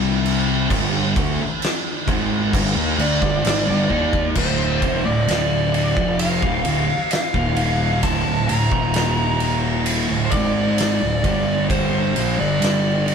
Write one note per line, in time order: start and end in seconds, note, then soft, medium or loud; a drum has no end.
0.00 0.67 C2 loud
0.00 0.69 C3 loud
0.00 0.69 G3 medium
0.00 0.70 C4 loud
0.26 crash medium
0.69 1.13 G1 loud
0.69 1.15 G2 medium
0.69 1.15 D3 loud
0.69 1.15 G3 loud
0.69 kick loud
0.69 crash medium
1.16 1.38 D2 medium
1.16 1.38 D3 medium
1.16 1.38 A3 loud
1.16 kick loud
1.16 crash medium
1.62 snare loud
1.62 crash medium
2.07 2.51 G#1 medium
2.07 2.52 G#2 medium
2.07 2.52 D#3 loud
2.07 2.53 G#3 loud
2.07 kick loud
2.07 crash medium
2.52 2.75 G1 loud
2.52 2.75 G2 loud
2.52 2.75 D3 loud
2.52 kick loud
2.52 crash medium
2.75 2.97 D#2 medium
2.75 2.97 D#3 medium
2.75 2.98 A#3 medium
2.98 3.20 D2 loud
2.98 3.20 D3 medium
2.98 3.21 A3 loud
2.98 4.33 D5 loud
2.98 crash medium
3.21 3.44 G1 loud
3.21 3.43 G2 loud
3.21 3.43 D3 medium
3.21 kick loud
3.44 3.66 G#1 medium
3.44 3.66 G#2 medium
3.44 3.66 D#3 loud
3.44 snare loud
3.44 crash medium
3.67 3.90 G1 loud
3.67 3.89 G2 medium
3.67 3.89 D3 loud
3.90 4.33 D#2 medium
3.90 4.35 D#3 medium
3.90 4.35 A#3 medium
3.90 4.35 D#4 medium
3.90 kick medium
4.13 kick loud
4.35 4.79 D1 loud
4.35 4.81 D2 medium
4.35 4.81 A2 medium
4.35 4.81 D3 loud
4.35 5.05 C5 loud
4.35 kick loud
4.35 crash loud
4.81 5.04 F1 medium
4.81 5.03 F2 medium
4.81 5.04 C3 loud
4.81 kick loud
4.81 ride medium
5.04 5.27 D1 medium
5.04 5.26 D2 medium
5.04 5.26 A2 medium
5.04 5.70 D5 medium
5.27 5.93 D1 medium
5.27 5.95 D2 medium
5.27 5.95 A2 medium
5.27 5.96 D3 medium
5.27 snare loud
5.27 ride medium
5.74 6.17 D5 medium
5.74 ride medium
5.96 6.39 F1 loud
5.96 6.41 F2 medium
5.96 6.41 C3 medium
5.96 6.42 F3 loud
5.96 kick loud
6.19 7.11 F5 loud
6.19 ride loud
6.42 6.64 D#1 medium
6.42 6.64 D#2 medium
6.42 6.65 A#2 loud
6.42 kick loud
6.65 6.87 D1 medium
6.65 6.87 D2 medium
6.65 6.88 A2 loud
6.65 ride medium
7.11 8.00 F5 medium
7.11 snare loud
7.11 ride loud
7.34 7.99 D#1 loud
7.34 8.02 D#2 loud
7.34 8.02 A#2 medium
7.34 8.02 D#3 medium
7.34 kick loud
7.57 ride medium
8.03 8.25 D1 loud
8.03 8.25 D2 medium
8.03 8.25 A2 loud
8.03 8.46 A5 loud
8.03 kick loud
8.03 ride loud
8.26 8.48 D1 medium
8.26 8.47 D2 medium
8.26 8.48 A2 medium
8.48 8.71 D1 medium
8.48 8.71 D2 medium
8.48 8.71 A2 medium
8.48 9.82 A#5 loud
8.48 ride medium
8.71 10.05 D#1 medium
8.71 10.08 D#2 medium
8.71 10.08 A#2 medium
8.71 10.08 D#3 medium
8.71 kick loud
8.94 snare loud
8.94 ride medium
9.40 ride medium
9.86 ride loud
10.10 10.31 D1 medium
10.10 10.32 D2 medium
10.10 10.32 A2 medium
10.25 10.31 C5 medium
10.31 10.97 G#1 medium
10.31 11.00 G#2 loud
10.31 11.00 D#3 loud
10.31 11.00 G#3 loud
10.31 11.65 D5 medium
10.31 kick loud
10.31 ride medium
10.78 snare loud
10.78 ride loud
11.01 11.23 D1 medium
11.01 11.24 D2 medium
11.01 11.24 A2 medium
11.24 11.67 G1 medium
11.24 11.68 G2 medium
11.24 11.68 D3 loud
11.24 11.69 G3 loud
11.24 kick loud
11.24 ride medium
11.69 12.12 G1 loud
11.69 12.14 G2 medium
11.69 12.14 D3 medium
11.69 12.14 G3 loud
11.69 12.39 C5 medium
11.69 kick loud
11.69 ride medium
12.15 12.38 A#1 loud
12.15 12.37 A#2 loud
12.15 12.37 F3 medium
12.15 ride medium
12.38 12.60 G1 medium
12.38 12.59 G2 medium
12.38 12.60 D3 medium
12.38 13.05 D5 loud
12.60 13.15 G1 loud
12.60 13.15 G2 medium
12.60 13.15 D3 loud
12.60 13.15 G3 loud
12.60 ride medium
12.64 snare loud
13.06 13.15 D5 medium
13.06 ride medium